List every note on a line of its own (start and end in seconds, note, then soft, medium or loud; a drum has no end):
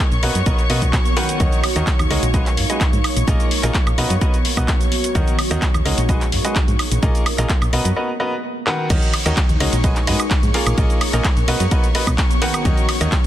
0.00 7.96 C#5 medium
0.00 0.70 A#5 medium
0.00 7.97 C#6 medium
0.12 0.19 A#1 medium
0.12 closed hi-hat soft
0.12 shaker soft
0.23 0.31 B1 medium
0.23 0.36 B3 medium
0.23 0.36 F#4 medium
0.23 0.36 A#4 medium
0.23 0.36 B4 medium
0.23 0.36 D#5 loud
0.23 open hi-hat loud
0.35 0.42 F#2 medium
0.35 closed hi-hat soft
0.35 shaker medium
0.46 0.54 B1 medium
0.46 0.59 B3 medium
0.46 0.59 F#4 medium
0.46 0.59 A#4 medium
0.46 0.59 B4 medium
0.46 0.59 D#5 medium
0.46 kick loud
0.46 closed hi-hat soft
0.46 shaker medium
0.59 closed hi-hat soft
0.59 shaker soft
0.70 0.98 B2 medium
0.70 0.82 B3 medium
0.70 0.82 F#4 medium
0.70 0.82 A#4 medium
0.70 0.82 B4 medium
0.70 0.82 D#5 medium
0.70 open hi-hat loud
0.82 kick medium
0.82 closed hi-hat soft
0.82 shaker medium
0.93 kick loud
0.93 clap loud
0.93 closed hi-hat soft
0.93 shaker medium
1.05 closed hi-hat soft
1.05 shaker soft
1.17 1.37 D#3 loud
1.17 1.37 F#4 medium
1.17 1.37 A#4 medium
1.17 1.37 B4 medium
1.17 1.37 F#5 loud
1.17 open hi-hat loud
1.29 closed hi-hat soft
1.29 shaker medium
1.40 1.48 D#2 loud
1.40 1.60 D#3 medium
1.40 1.60 F#4 medium
1.40 1.60 A#4 medium
1.40 1.60 C#5 medium
1.40 1.60 D#5 loud
1.40 kick loud
1.40 closed hi-hat medium
1.40 shaker medium
1.52 closed hi-hat soft
1.52 shaker soft
1.64 open hi-hat loud
1.64 high woodblock medium
1.76 1.83 D#2 medium
1.76 1.87 D#3 loud
1.76 1.87 F#4 medium
1.76 1.87 A#4 medium
1.76 1.87 C#5 medium
1.76 1.87 D#5 loud
1.76 closed hi-hat soft
1.76 shaker medium
1.87 kick loud
1.87 clap loud
1.87 closed hi-hat soft
1.87 shaker medium
1.99 2.06 D#2 medium
1.99 closed hi-hat soft
1.99 high woodblock medium
1.99 shaker soft
2.10 2.18 C#2 medium
2.10 2.23 G#3 medium
2.10 2.23 F#4 medium
2.10 2.23 A#4 medium
2.10 2.23 C#5 medium
2.10 2.23 D#5 loud
2.10 open hi-hat loud
2.23 2.59 A#1 medium
2.23 closed hi-hat soft
2.23 shaker medium
2.34 2.46 G#3 medium
2.34 2.47 F#4 medium
2.34 2.46 G#4 medium
2.34 2.46 B4 medium
2.34 2.46 D#5 medium
2.34 kick loud
2.34 closed hi-hat soft
2.34 shaker medium
2.46 clap soft
2.46 closed hi-hat soft
2.46 shaker soft
2.57 2.65 G#2 medium
2.57 open hi-hat loud
2.66 2.81 G#3 medium
2.66 2.81 F#4 medium
2.66 2.81 G#4 medium
2.66 2.81 B4 medium
2.66 2.81 D#5 medium
2.66 4.45 A#5 medium
2.66 closed hi-hat soft
2.66 shaker medium
2.81 kick loud
2.81 clap loud
2.81 closed hi-hat soft
2.81 shaker medium
2.93 3.00 G#2 medium
2.93 closed hi-hat soft
2.93 shaker soft
3.04 open hi-hat loud
3.04 high woodblock medium
3.16 3.23 A#1 medium
3.16 closed hi-hat medium
3.16 shaker medium
3.28 3.35 A#1 loud
3.28 3.47 A#3 medium
3.28 3.47 F4 medium
3.28 3.47 G#4 medium
3.28 3.47 A#4 medium
3.28 3.47 D#5 loud
3.28 kick loud
3.28 closed hi-hat medium
3.28 shaker medium
3.40 closed hi-hat soft
3.40 shaker soft
3.51 open hi-hat loud
3.63 3.70 A#1 loud
3.63 3.75 A#3 loud
3.63 3.75 F4 medium
3.63 3.75 G#4 medium
3.63 3.75 A#4 medium
3.63 3.75 D#5 loud
3.63 clap soft
3.63 closed hi-hat soft
3.63 shaker medium
3.74 kick loud
3.74 clap loud
3.74 closed hi-hat soft
3.74 shaker medium
3.87 3.94 A#1 medium
3.87 closed hi-hat soft
3.87 high woodblock medium
3.87 shaker soft
3.98 4.06 B1 medium
3.98 4.11 B3 medium
3.98 4.11 F#4 medium
3.98 4.11 A#4 medium
3.98 4.11 B4 medium
3.98 4.11 D#5 loud
3.98 open hi-hat loud
4.10 4.17 F#2 medium
4.10 closed hi-hat medium
4.10 shaker medium
4.21 4.34 B3 medium
4.21 4.34 F#4 medium
4.21 4.34 A#4 medium
4.21 4.34 B4 medium
4.21 4.34 D#5 medium
4.21 kick loud
4.21 closed hi-hat medium
4.21 shaker medium
4.34 closed hi-hat soft
4.34 shaker soft
4.45 open hi-hat loud
4.57 4.64 B2 medium
4.57 4.69 B3 medium
4.57 4.69 F#4 medium
4.57 4.69 A#4 medium
4.57 4.69 B4 medium
4.57 4.69 D#5 medium
4.57 kick medium
4.57 closed hi-hat medium
4.57 high woodblock medium
4.57 shaker medium
4.68 kick loud
4.68 clap loud
4.68 closed hi-hat soft
4.68 shaker medium
4.81 closed hi-hat soft
4.81 shaker soft
4.92 open hi-hat loud
5.04 closed hi-hat medium
5.04 shaker medium
5.15 5.23 D#2 medium
5.15 5.35 D#3 medium
5.15 5.35 F#4 medium
5.15 5.35 A#4 medium
5.15 5.35 C#5 medium
5.15 5.35 D#5 loud
5.15 kick loud
5.15 closed hi-hat medium
5.15 shaker medium
5.28 closed hi-hat soft
5.28 shaker soft
5.39 open hi-hat loud
5.39 high woodblock medium
5.51 5.58 D#2 loud
5.51 5.62 D#3 loud
5.51 5.62 F#4 medium
5.51 5.62 A#4 medium
5.51 5.62 C#5 medium
5.51 5.62 D#5 loud
5.51 closed hi-hat soft
5.51 shaker medium
5.62 kick loud
5.62 clap loud
5.62 closed hi-hat medium
5.62 shaker medium
5.74 5.81 D#2 medium
5.74 closed hi-hat soft
5.74 high woodblock medium
5.74 shaker soft
5.85 5.93 C#2 medium
5.85 5.98 G#3 medium
5.85 5.98 F#4 medium
5.85 5.98 A#4 medium
5.85 5.98 C#5 medium
5.85 5.98 D#5 loud
5.85 open hi-hat loud
5.98 6.34 A#1 medium
5.98 closed hi-hat medium
5.98 shaker medium
6.09 6.21 G#3 medium
6.09 6.21 F#4 medium
6.09 6.21 G#4 medium
6.09 6.21 B4 medium
6.09 6.21 D#5 medium
6.09 kick loud
6.09 closed hi-hat medium
6.09 shaker medium
6.21 clap soft
6.21 closed hi-hat soft
6.21 shaker soft
6.32 6.40 G#2 medium
6.32 open hi-hat loud
6.41 6.56 G#3 medium
6.41 6.56 F#4 medium
6.41 6.56 G#4 medium
6.41 6.56 B4 medium
6.41 6.56 D#5 medium
6.41 7.96 A#5 medium
6.41 closed hi-hat medium
6.41 shaker medium
6.56 kick loud
6.56 clap loud
6.56 closed hi-hat medium
6.56 shaker medium
6.68 6.75 G#2 medium
6.68 closed hi-hat soft
6.68 shaker soft
6.79 open hi-hat loud
6.79 high woodblock medium
6.91 6.98 A#1 medium
6.91 closed hi-hat medium
6.91 shaker medium
7.03 7.10 A#1 loud
7.03 7.22 A#3 medium
7.03 7.22 F4 medium
7.03 7.22 G#4 medium
7.03 7.22 A#4 medium
7.03 7.22 D#5 loud
7.03 kick loud
7.03 closed hi-hat medium
7.03 shaker medium
7.15 closed hi-hat soft
7.15 shaker soft
7.26 open hi-hat loud
7.26 high woodblock medium
7.38 7.45 A#1 loud
7.38 7.50 A#3 loud
7.38 7.50 F4 medium
7.38 7.50 G#4 medium
7.38 7.50 A#4 medium
7.38 7.50 D#5 loud
7.38 clap soft
7.38 closed hi-hat medium
7.38 shaker medium
7.49 kick loud
7.49 clap loud
7.49 closed hi-hat medium
7.49 shaker medium
7.62 7.69 A#1 medium
7.62 closed hi-hat soft
7.62 high woodblock medium
7.62 shaker soft
7.73 7.81 B1 medium
7.73 7.86 B3 medium
7.73 7.86 F#4 medium
7.73 7.86 A#4 medium
7.73 7.86 B4 medium
7.73 7.86 D#5 loud
7.73 open hi-hat loud
7.85 7.92 F#2 medium
7.85 closed hi-hat medium
7.85 shaker medium
7.96 8.09 B3 medium
7.96 8.09 F#4 medium
7.96 8.09 A#4 medium
7.96 8.09 B4 medium
7.96 8.09 D#5 medium
8.20 8.32 B3 medium
8.20 8.32 F#4 medium
8.20 8.32 A#4 medium
8.20 8.32 B4 medium
8.20 8.32 D#5 loud
8.67 8.87 D#3 loud
8.67 8.87 F#4 medium
8.67 8.87 A#4 loud
8.67 8.87 B4 medium
8.67 8.88 F#5 loud
8.67 clap medium
8.90 8.98 D#2 loud
8.90 9.10 D#3 medium
8.90 9.10 F#4 medium
8.90 9.10 A#4 medium
8.90 13.27 C#5 medium
8.90 9.10 C#5 medium
8.90 9.10 D#5 loud
8.90 13.27 C#6 medium
8.90 kick loud
8.90 closed hi-hat medium
8.90 ride medium
8.90 crash loud
8.90 shaker medium
9.02 closed hi-hat soft
9.02 shaker soft
9.14 open hi-hat loud
9.14 ride medium
9.14 high woodblock medium
9.26 9.33 D#2 medium
9.26 9.37 D#3 loud
9.26 9.37 F#4 medium
9.26 9.37 A#4 medium
9.26 9.37 C#5 medium
9.26 9.37 D#5 loud
9.26 closed hi-hat medium
9.26 shaker medium
9.37 kick loud
9.37 clap loud
9.37 closed hi-hat medium
9.37 ride medium
9.37 shaker medium
9.49 9.56 D#2 medium
9.49 closed hi-hat soft
9.49 shaker soft
9.60 9.68 C#2 medium
9.60 9.73 G#3 medium
9.60 9.73 F#4 medium
9.60 9.73 A#4 medium
9.60 9.73 C#5 medium
9.60 9.73 D#5 loud
9.60 open hi-hat loud
9.60 ride medium
9.73 10.09 A#1 medium
9.73 closed hi-hat medium
9.73 shaker medium
9.84 9.96 G#3 medium
9.84 9.96 F#4 medium
9.84 9.96 G#4 medium
9.84 9.96 B4 medium
9.84 9.96 D#5 medium
9.84 kick loud
9.84 closed hi-hat medium
9.84 ride medium
9.84 shaker medium
9.96 clap soft
9.96 closed hi-hat soft
9.96 shaker soft
10.07 10.15 G#2 loud
10.07 10.20 G#3 medium
10.07 10.20 F#4 medium
10.07 10.20 G#4 medium
10.07 10.20 B4 medium
10.07 10.20 D#5 loud
10.07 open hi-hat loud
10.07 ride medium
10.16 11.95 A#5 medium
10.16 closed hi-hat medium
10.16 high woodblock medium
10.16 shaker medium
10.31 kick loud
10.31 clap loud
10.31 closed hi-hat medium
10.31 ride medium
10.31 shaker medium
10.43 10.50 G#2 medium
10.43 closed hi-hat soft
10.43 shaker soft
10.54 10.75 A#3 loud
10.54 10.75 F4 loud
10.54 10.75 G#4 medium
10.54 10.75 A#4 medium
10.54 10.75 F5 loud
10.54 open hi-hat loud
10.54 ride medium
10.66 10.73 A#1 medium
10.66 closed hi-hat medium
10.66 high woodblock medium
10.66 shaker medium
10.78 10.85 A#1 loud
10.78 10.97 A#3 medium
10.78 10.97 F4 medium
10.78 10.97 G#4 medium
10.78 10.97 A#4 medium
10.78 10.97 D#5 loud
10.78 kick loud
10.78 closed hi-hat medium
10.78 ride medium
10.78 shaker medium
10.90 closed hi-hat soft
10.90 shaker soft
11.01 open hi-hat loud
11.01 ride medium
11.01 high woodblock medium
11.13 11.20 A#1 loud
11.13 11.25 A#3 loud
11.13 11.25 F4 medium
11.13 11.25 G#4 medium
11.13 11.25 A#4 medium
11.13 11.25 D#5 loud
11.13 clap soft
11.13 closed hi-hat medium
11.13 shaker medium
11.24 kick loud
11.24 clap loud
11.24 closed hi-hat medium
11.24 ride medium
11.24 shaker medium
11.37 11.44 A#1 loud
11.37 closed hi-hat soft
11.37 shaker soft
11.48 11.56 B1 medium
11.48 11.61 B3 medium
11.48 11.61 F#4 medium
11.48 11.61 A#4 medium
11.48 11.61 B4 medium
11.48 11.61 D#5 loud
11.48 open hi-hat loud
11.48 ride medium
11.60 11.67 F#2 medium
11.60 closed hi-hat medium
11.60 shaker medium
11.71 11.84 B3 medium
11.71 11.84 F#4 medium
11.71 11.84 A#4 medium
11.71 11.84 B4 medium
11.71 11.84 D#5 medium
11.71 kick loud
11.71 closed hi-hat medium
11.71 ride medium
11.71 shaker medium
11.84 closed hi-hat soft
11.84 shaker soft
11.95 12.07 B3 medium
11.95 12.07 F#4 medium
11.95 12.07 A#4 medium
11.95 12.07 B4 medium
11.95 12.07 D#5 loud
11.95 open hi-hat loud
11.95 ride medium
12.07 12.14 B2 medium
12.07 kick medium
12.07 closed hi-hat medium
12.07 high woodblock medium
12.07 shaker medium
12.18 kick loud
12.18 clap loud
12.18 closed hi-hat medium
12.18 ride medium
12.18 shaker medium
12.31 closed hi-hat soft
12.31 shaker soft
12.42 12.63 D#3 loud
12.42 12.63 F#4 loud
12.42 12.63 A#4 loud
12.42 12.63 B4 loud
12.42 12.63 F#5 loud
12.42 open hi-hat loud
12.42 ride medium
12.54 closed hi-hat medium
12.54 high woodblock medium
12.54 shaker medium
12.65 12.73 D#2 loud
12.65 12.85 D#3 medium
12.65 12.85 F#4 medium
12.65 12.85 A#4 medium
12.65 12.85 C#5 medium
12.65 12.85 D#5 loud
12.65 kick loud
12.65 closed hi-hat medium
12.65 ride medium
12.65 shaker medium
12.77 closed hi-hat soft
12.77 shaker soft
12.89 open hi-hat loud
12.89 ride medium
12.89 high woodblock medium
13.01 13.08 D#2 loud
13.01 13.12 D#3 loud
13.01 13.12 F#4 medium
13.01 13.12 A#4 medium
13.01 13.12 C#5 medium
13.01 13.12 D#5 loud
13.01 closed hi-hat medium
13.01 shaker medium
13.12 kick loud
13.12 clap loud
13.12 closed hi-hat medium
13.12 ride medium
13.12 shaker medium